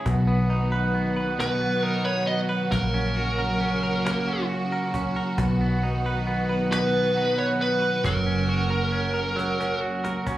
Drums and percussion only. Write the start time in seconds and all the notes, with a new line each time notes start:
0.06 cajon bass
0.95 cajon slap
1.40 cajon slap
1.85 cajon slap
2.28 cajon slap
2.72 cajon bass
3.17 cajon slap
3.61 cajon slap
4.06 cajon slap
4.51 cajon slap
4.94 cajon bass
5.38 cajon bass
6.28 cajon slap
6.72 cajon slap
7.60 cajon slap
8.04 cajon bass
8.50 cajon slap
8.94 cajon slap
9.38 cajon slap
9.61 cajon slap
9.83 cajon slap
10.05 cajon slap
10.27 cajon bass